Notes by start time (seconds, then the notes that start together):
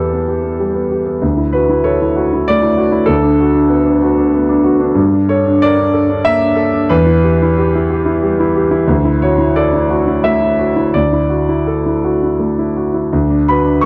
Already playing: E2 B3 G4 A4
0.13 B3
0.28 G4
0.43 B3
0.60 G3
0.75 B3
0.91 G4
1.06 B3
1.22 D2
1.37 E4
1.53 F#4 B4
1.70 E4
1.84 A4 C#5
2.02 E4
2.16 F#4
2.33 E4
2.48 A3 D5
2.62 E4
2.77 F#4
2.91 E4
3.06 D2 A4
3.23 D4
3.40 F#4
3.54 D4
3.69 B3
3.85 D4
4.02 F#4
4.17 D4
4.34 B3
4.49 D4
4.64 F#4
4.80 D4
4.95 G2
5.14 D4
5.29 A4 C#5
5.46 D4
5.62 A#4 D5
5.78 D4
5.93 A4
6.10 D4
6.25 A#3 E5
6.41 D4
6.56 A4
6.73 D4
6.89 E2 B4
7.06 E4
7.23 G4
7.42 E4
7.58 G4
7.75 E4
7.90 G4
8.06 E4
8.23 G3
8.40 E4
8.56 G4
8.71 E4
8.87 D2
9.05 E4
9.22 F#4 C#5
9.38 E4
9.56 A4 D5
9.74 E4
9.90 F#4
10.07 E4
10.24 A3 E5
10.41 E4
10.59 F#4
10.76 E4
10.94 D2 D5
11.13 E4
11.30 F#4
11.49 E4
11.67 A4
11.86 E4
12.04 F#4
12.24 E4
12.39 A3
12.59 E4
12.77 F#4
12.94 E4
13.12 D2
13.30 D4
13.48 F#4 B4 B5
13.64 D4
13.81 C#6